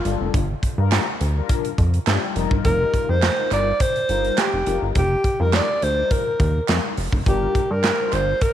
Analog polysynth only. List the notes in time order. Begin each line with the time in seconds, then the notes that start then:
0.05 G3 D4 F4 A4
0.78 G3 D4 F4 A#4
1.36 G3 D4 F4 A#4
2.07 G3 D4 F4 G4
2.35 G3 D#4 F4 A#4
3.37 G3 D#4 F4 A#4
4.09 G3 D#4 F4 A#4
4.66 G3 D#4 F4 A#4
5.39 G3 D#4 F4 A#4
5.96 G3 D#4 F4 A#4
6.67 G3 D#4 F4 A#4
7.26 G3 D4 F4 A#4
7.99 G3 D4 F4 C5